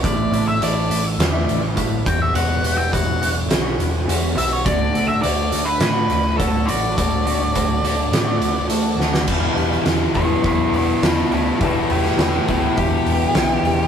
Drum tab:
CC |----------------|----------------|----------------|----------------|
HH |x-x-x-x-x-x-x-x-|x-x-x-x-x-x-x-x-|x-x-x-x-x-x-x-x-|x-x-x-x-x-x-x---|
SD |--------o-------|--------o-------|--------o-------|--------o-----oo|
BD |o-----------o-o-|----o-----------|o-----------o---|o---o-----------|

CC |x---------------|----------------|
HH |--o-o-o-o-o-o-o-|o-o-o-o-o-o-o-o-|
SD |---oo-------o---|---oo-------o---|
BD |o-----o-o-------|o-----o-o-------|